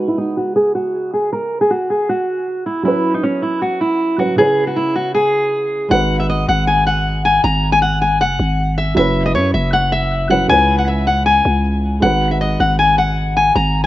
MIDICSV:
0, 0, Header, 1, 4, 480
1, 0, Start_track
1, 0, Key_signature, 5, "minor"
1, 0, Tempo, 382166
1, 1664, Time_signature, 4, 2, 24, 8
1, 17414, End_track
2, 0, Start_track
2, 0, Title_t, "Steel-string acoustic guitar"
2, 0, Program_c, 0, 25
2, 101, Note_on_c, 0, 64, 64
2, 213, Note_off_c, 0, 64, 0
2, 226, Note_on_c, 0, 63, 83
2, 445, Note_off_c, 0, 63, 0
2, 466, Note_on_c, 0, 66, 77
2, 685, Note_off_c, 0, 66, 0
2, 700, Note_on_c, 0, 68, 78
2, 922, Note_off_c, 0, 68, 0
2, 941, Note_on_c, 0, 66, 77
2, 1394, Note_off_c, 0, 66, 0
2, 1426, Note_on_c, 0, 68, 79
2, 1645, Note_off_c, 0, 68, 0
2, 1665, Note_on_c, 0, 70, 90
2, 2003, Note_off_c, 0, 70, 0
2, 2022, Note_on_c, 0, 68, 85
2, 2133, Note_off_c, 0, 68, 0
2, 2142, Note_on_c, 0, 66, 83
2, 2363, Note_off_c, 0, 66, 0
2, 2387, Note_on_c, 0, 68, 79
2, 2606, Note_off_c, 0, 68, 0
2, 2629, Note_on_c, 0, 66, 85
2, 3304, Note_off_c, 0, 66, 0
2, 3342, Note_on_c, 0, 64, 70
2, 3563, Note_off_c, 0, 64, 0
2, 3579, Note_on_c, 0, 64, 94
2, 3920, Note_off_c, 0, 64, 0
2, 3947, Note_on_c, 0, 63, 78
2, 4056, Note_off_c, 0, 63, 0
2, 4061, Note_on_c, 0, 61, 80
2, 4282, Note_off_c, 0, 61, 0
2, 4301, Note_on_c, 0, 64, 69
2, 4522, Note_off_c, 0, 64, 0
2, 4544, Note_on_c, 0, 66, 84
2, 4764, Note_off_c, 0, 66, 0
2, 4783, Note_on_c, 0, 64, 76
2, 5235, Note_off_c, 0, 64, 0
2, 5263, Note_on_c, 0, 66, 82
2, 5483, Note_off_c, 0, 66, 0
2, 5503, Note_on_c, 0, 68, 107
2, 5842, Note_off_c, 0, 68, 0
2, 5867, Note_on_c, 0, 66, 75
2, 5976, Note_off_c, 0, 66, 0
2, 5982, Note_on_c, 0, 64, 80
2, 6203, Note_off_c, 0, 64, 0
2, 6224, Note_on_c, 0, 66, 80
2, 6444, Note_off_c, 0, 66, 0
2, 6462, Note_on_c, 0, 68, 94
2, 7373, Note_off_c, 0, 68, 0
2, 7422, Note_on_c, 0, 78, 107
2, 7762, Note_off_c, 0, 78, 0
2, 7783, Note_on_c, 0, 76, 68
2, 7894, Note_off_c, 0, 76, 0
2, 7907, Note_on_c, 0, 75, 88
2, 8126, Note_off_c, 0, 75, 0
2, 8145, Note_on_c, 0, 78, 80
2, 8365, Note_off_c, 0, 78, 0
2, 8382, Note_on_c, 0, 80, 84
2, 8603, Note_off_c, 0, 80, 0
2, 8624, Note_on_c, 0, 78, 84
2, 9075, Note_off_c, 0, 78, 0
2, 9106, Note_on_c, 0, 80, 84
2, 9325, Note_off_c, 0, 80, 0
2, 9342, Note_on_c, 0, 82, 98
2, 9682, Note_off_c, 0, 82, 0
2, 9700, Note_on_c, 0, 80, 91
2, 9812, Note_off_c, 0, 80, 0
2, 9821, Note_on_c, 0, 78, 83
2, 10042, Note_off_c, 0, 78, 0
2, 10068, Note_on_c, 0, 80, 82
2, 10286, Note_off_c, 0, 80, 0
2, 10310, Note_on_c, 0, 78, 90
2, 10984, Note_off_c, 0, 78, 0
2, 11024, Note_on_c, 0, 76, 76
2, 11244, Note_off_c, 0, 76, 0
2, 11263, Note_on_c, 0, 76, 99
2, 11602, Note_off_c, 0, 76, 0
2, 11627, Note_on_c, 0, 75, 80
2, 11735, Note_off_c, 0, 75, 0
2, 11740, Note_on_c, 0, 73, 83
2, 11962, Note_off_c, 0, 73, 0
2, 11981, Note_on_c, 0, 76, 72
2, 12203, Note_off_c, 0, 76, 0
2, 12223, Note_on_c, 0, 78, 91
2, 12443, Note_off_c, 0, 78, 0
2, 12461, Note_on_c, 0, 76, 78
2, 12914, Note_off_c, 0, 76, 0
2, 12941, Note_on_c, 0, 78, 88
2, 13163, Note_off_c, 0, 78, 0
2, 13181, Note_on_c, 0, 80, 115
2, 13521, Note_off_c, 0, 80, 0
2, 13544, Note_on_c, 0, 78, 77
2, 13654, Note_off_c, 0, 78, 0
2, 13661, Note_on_c, 0, 76, 84
2, 13883, Note_off_c, 0, 76, 0
2, 13902, Note_on_c, 0, 78, 87
2, 14123, Note_off_c, 0, 78, 0
2, 14141, Note_on_c, 0, 80, 99
2, 15052, Note_off_c, 0, 80, 0
2, 15100, Note_on_c, 0, 78, 106
2, 15441, Note_off_c, 0, 78, 0
2, 15462, Note_on_c, 0, 76, 66
2, 15573, Note_off_c, 0, 76, 0
2, 15585, Note_on_c, 0, 75, 85
2, 15805, Note_off_c, 0, 75, 0
2, 15826, Note_on_c, 0, 78, 82
2, 16045, Note_off_c, 0, 78, 0
2, 16063, Note_on_c, 0, 80, 86
2, 16283, Note_off_c, 0, 80, 0
2, 16304, Note_on_c, 0, 78, 81
2, 16755, Note_off_c, 0, 78, 0
2, 16788, Note_on_c, 0, 80, 83
2, 17006, Note_off_c, 0, 80, 0
2, 17025, Note_on_c, 0, 82, 96
2, 17363, Note_off_c, 0, 82, 0
2, 17414, End_track
3, 0, Start_track
3, 0, Title_t, "Felt piano"
3, 0, Program_c, 1, 0
3, 0, Note_on_c, 1, 56, 62
3, 0, Note_on_c, 1, 63, 63
3, 0, Note_on_c, 1, 66, 59
3, 0, Note_on_c, 1, 71, 69
3, 5, Control_c, 1, 64, 127
3, 3519, Note_off_c, 1, 56, 0
3, 3529, Note_off_c, 1, 63, 0
3, 3538, Note_off_c, 1, 66, 0
3, 3548, Note_off_c, 1, 71, 0
3, 3558, Note_on_c, 1, 54, 65
3, 3576, Note_on_c, 1, 61, 63
3, 3596, Note_on_c, 1, 64, 61
3, 3602, Control_c, 1, 64, 0
3, 3615, Note_on_c, 1, 71, 77
3, 3827, Control_c, 1, 64, 127
3, 5217, Note_off_c, 1, 54, 0
3, 5227, Note_off_c, 1, 61, 0
3, 5237, Note_off_c, 1, 64, 0
3, 5247, Note_off_c, 1, 71, 0
3, 5251, Note_on_c, 1, 54, 52
3, 5261, Note_on_c, 1, 61, 49
3, 5271, Note_on_c, 1, 64, 42
3, 5280, Note_on_c, 1, 71, 54
3, 5476, Note_off_c, 1, 61, 0
3, 5476, Note_on_c, 1, 49, 68
3, 5495, Note_off_c, 1, 64, 0
3, 5495, Note_on_c, 1, 61, 64
3, 5498, Note_off_c, 1, 54, 0
3, 5512, Note_off_c, 1, 71, 0
3, 5514, Note_on_c, 1, 64, 64
3, 5523, Control_c, 1, 64, 0
3, 5533, Note_on_c, 1, 71, 73
3, 5761, Control_c, 1, 64, 127
3, 7372, Note_off_c, 1, 49, 0
3, 7381, Note_off_c, 1, 61, 0
3, 7391, Note_off_c, 1, 64, 0
3, 7394, Note_on_c, 1, 56, 68
3, 7401, Note_off_c, 1, 71, 0
3, 7413, Note_on_c, 1, 63, 66
3, 7432, Note_on_c, 1, 66, 65
3, 7440, Control_c, 1, 64, 0
3, 7451, Note_on_c, 1, 71, 76
3, 7681, Control_c, 1, 64, 127
3, 11199, Note_off_c, 1, 56, 0
3, 11209, Note_off_c, 1, 63, 0
3, 11218, Note_off_c, 1, 66, 0
3, 11228, Note_off_c, 1, 71, 0
3, 11238, Note_on_c, 1, 54, 70
3, 11257, Note_on_c, 1, 61, 63
3, 11275, Note_on_c, 1, 64, 63
3, 11279, Control_c, 1, 64, 0
3, 11295, Note_on_c, 1, 71, 79
3, 11517, Control_c, 1, 64, 127
3, 12897, Note_off_c, 1, 54, 0
3, 12907, Note_off_c, 1, 61, 0
3, 12916, Note_off_c, 1, 64, 0
3, 12926, Note_off_c, 1, 71, 0
3, 12931, Note_on_c, 1, 54, 54
3, 12940, Note_on_c, 1, 61, 51
3, 12950, Note_on_c, 1, 64, 45
3, 12959, Note_on_c, 1, 71, 56
3, 13156, Note_off_c, 1, 61, 0
3, 13156, Note_on_c, 1, 49, 72
3, 13175, Note_off_c, 1, 64, 0
3, 13175, Note_on_c, 1, 61, 66
3, 13178, Note_off_c, 1, 54, 0
3, 13192, Note_off_c, 1, 71, 0
3, 13194, Note_on_c, 1, 64, 63
3, 13202, Control_c, 1, 64, 0
3, 13213, Note_on_c, 1, 71, 81
3, 13398, Control_c, 1, 64, 127
3, 15051, Note_off_c, 1, 49, 0
3, 15061, Note_off_c, 1, 61, 0
3, 15071, Note_off_c, 1, 64, 0
3, 15075, Note_on_c, 1, 56, 66
3, 15081, Note_off_c, 1, 71, 0
3, 15094, Note_on_c, 1, 63, 68
3, 15114, Note_on_c, 1, 66, 62
3, 15123, Control_c, 1, 64, 0
3, 15133, Note_on_c, 1, 71, 75
3, 15299, Control_c, 1, 64, 127
3, 17414, Note_off_c, 1, 56, 0
3, 17414, Note_off_c, 1, 63, 0
3, 17414, Note_off_c, 1, 66, 0
3, 17414, Note_off_c, 1, 71, 0
3, 17414, End_track
4, 0, Start_track
4, 0, Title_t, "808-style bass"
4, 0, Program_c, 2, 38
4, 7424, Note_on_c, 2, 32, 112
4, 8116, Note_off_c, 2, 32, 0
4, 8144, Note_on_c, 2, 32, 102
4, 9296, Note_off_c, 2, 32, 0
4, 9343, Note_on_c, 2, 32, 108
4, 10304, Note_on_c, 2, 30, 102
4, 10323, Note_off_c, 2, 32, 0
4, 10532, Note_off_c, 2, 30, 0
4, 10543, Note_on_c, 2, 32, 107
4, 11235, Note_off_c, 2, 32, 0
4, 11263, Note_on_c, 2, 30, 108
4, 11744, Note_on_c, 2, 42, 99
4, 11763, Note_off_c, 2, 30, 0
4, 11972, Note_off_c, 2, 42, 0
4, 11984, Note_on_c, 2, 30, 103
4, 13136, Note_off_c, 2, 30, 0
4, 13184, Note_on_c, 2, 37, 114
4, 14336, Note_off_c, 2, 37, 0
4, 14384, Note_on_c, 2, 37, 104
4, 15075, Note_off_c, 2, 37, 0
4, 15103, Note_on_c, 2, 32, 113
4, 15795, Note_off_c, 2, 32, 0
4, 15824, Note_on_c, 2, 32, 105
4, 16976, Note_off_c, 2, 32, 0
4, 17025, Note_on_c, 2, 32, 110
4, 17414, Note_off_c, 2, 32, 0
4, 17414, End_track
0, 0, End_of_file